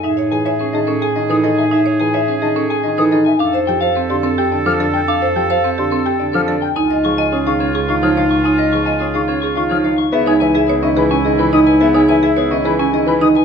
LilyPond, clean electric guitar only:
\new Staff \with { instrumentName = "Clean electric guitar" } { \time 3/4 \key cis \minor \tempo 4 = 107 e''16 cis''16 gis''16 e''16 gis'16 dis''16 a'16 gis''16 dis''16 a'16 dis''16 gis''16 | e''16 cis''16 gis''16 e''16 gis'16 dis''16 a'16 gis''16 dis''16 a'16 dis''16 gis''16 | f''16 c''16 g''16 f''16 g'16 d''16 a'16 g''16 d''16 a'16 d''16 g''16 | f''16 c''16 g''16 f''16 g'16 d''16 a'16 g''16 d''16 a'16 d''16 g''16 |
gis''16 dis''16 cis'''16 gis''16 gis'16 eis''16 cis''16 cis'''16 eis''16 cis''16 eis''16 cis'''16 | gis''16 dis''16 cis'''16 gis''16 gis'16 eis''16 cis''16 cis'''16 eis''16 cis''16 eis''16 cis'''16 | e''16 cis''16 gis''16 e''16 gis'16 dis''16 b'16 gis''16 dis''16 b'16 dis''16 gis''16 | e''16 cis''16 gis''16 e''16 gis'16 dis''16 b'16 gis''16 dis''16 b'16 dis''16 gis''16 | }